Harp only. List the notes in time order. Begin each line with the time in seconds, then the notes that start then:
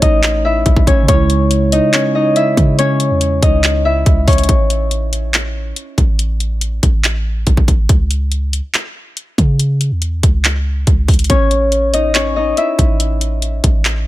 Already playing: C#4 C#5
0.02 D#4 D#5
0.45 E4 E5
0.87 C#4 C#5
1.08 C#4 C#5
1.72 D#4 D#5
1.94 C#4 C#5
2.15 D#4 D#5
2.36 E4 E5
2.79 C#4 C#5
3.43 D#4 D#5
3.85 E4 E5
4.28 C#4 C#5
11.30 C#4 C#5
11.94 D#4 D#5
12.15 C#4 C#5
12.36 D#4 D#5
12.57 E4 E5